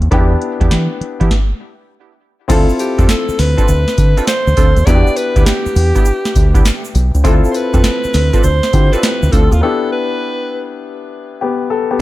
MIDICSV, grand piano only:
0, 0, Header, 1, 2, 480
1, 0, Start_track
1, 0, Tempo, 594059
1, 96, Time_signature, 4, 2, 24, 8
1, 9707, End_track
2, 0, Start_track
2, 0, Title_t, "Grand piano"
2, 0, Program_c, 0, 0
2, 0, Control_c, 0, 64, 127
2, 89, Note_on_c, 0, 59, 77
2, 95, Note_on_c, 0, 62, 70
2, 102, Note_on_c, 0, 64, 68
2, 106, Control_c, 0, 64, 0
2, 109, Note_on_c, 0, 67, 80
2, 267, Control_c, 0, 64, 127
2, 1033, Note_off_c, 0, 59, 0
2, 1036, Note_off_c, 0, 62, 0
2, 1040, Note_off_c, 0, 64, 0
2, 1043, Note_off_c, 0, 67, 0
2, 1065, Control_c, 0, 64, 0
2, 2003, Note_on_c, 0, 60, 84
2, 2008, Note_on_c, 0, 64, 78
2, 2017, Note_on_c, 0, 65, 82
2, 2023, Note_on_c, 0, 69, 98
2, 2163, Control_c, 0, 64, 127
2, 3897, Note_off_c, 0, 60, 0
2, 3900, Note_off_c, 0, 64, 0
2, 3904, Note_off_c, 0, 65, 0
2, 3907, Note_off_c, 0, 69, 0
2, 3929, Note_on_c, 0, 59, 70
2, 3934, Note_on_c, 0, 62, 64
2, 3942, Note_on_c, 0, 64, 62
2, 3945, Note_on_c, 0, 66, 63
2, 3947, Control_c, 0, 64, 0
2, 3999, Note_on_c, 0, 67, 81
2, 4010, Note_off_c, 0, 66, 0
2, 4100, Control_c, 0, 64, 127
2, 5820, Note_off_c, 0, 59, 0
2, 5822, Note_off_c, 0, 62, 0
2, 5826, Note_off_c, 0, 64, 0
2, 5848, Note_on_c, 0, 60, 86
2, 5853, Note_on_c, 0, 64, 79
2, 5855, Note_off_c, 0, 67, 0
2, 5862, Note_on_c, 0, 65, 81
2, 5867, Control_c, 0, 64, 0
2, 5868, Note_on_c, 0, 69, 87
2, 6028, Control_c, 0, 64, 127
2, 7028, Note_off_c, 0, 60, 0
2, 7030, Note_off_c, 0, 64, 0
2, 7035, Note_off_c, 0, 65, 0
2, 7038, Note_off_c, 0, 69, 0
2, 7052, Note_on_c, 0, 60, 53
2, 7056, Note_on_c, 0, 64, 52
2, 7059, Note_on_c, 0, 65, 48
2, 7060, Note_on_c, 0, 67, 63
2, 7768, Note_on_c, 0, 59, 69
2, 7769, Note_off_c, 0, 64, 0
2, 7774, Note_off_c, 0, 60, 0
2, 7774, Note_off_c, 0, 67, 0
2, 7776, Note_on_c, 0, 62, 65
2, 7778, Note_off_c, 0, 65, 0
2, 7781, Note_on_c, 0, 64, 63
2, 7786, Control_c, 0, 64, 0
2, 7786, Note_on_c, 0, 67, 76
2, 7926, Control_c, 0, 64, 127
2, 9183, Note_off_c, 0, 59, 0
2, 9187, Note_off_c, 0, 62, 0
2, 9190, Note_off_c, 0, 64, 0
2, 9192, Note_off_c, 0, 67, 0
2, 9221, Note_on_c, 0, 67, 70
2, 9229, Note_on_c, 0, 59, 60
2, 9447, Note_off_c, 0, 67, 0
2, 9451, Note_off_c, 0, 59, 0
2, 9456, Note_on_c, 0, 69, 74
2, 9606, Note_off_c, 0, 69, 0
2, 9620, Note_on_c, 0, 67, 72
2, 9622, Note_on_c, 0, 59, 63
2, 9706, Control_c, 0, 64, 0
2, 9707, Note_off_c, 0, 59, 0
2, 9707, Note_off_c, 0, 67, 0
2, 9707, End_track
0, 0, End_of_file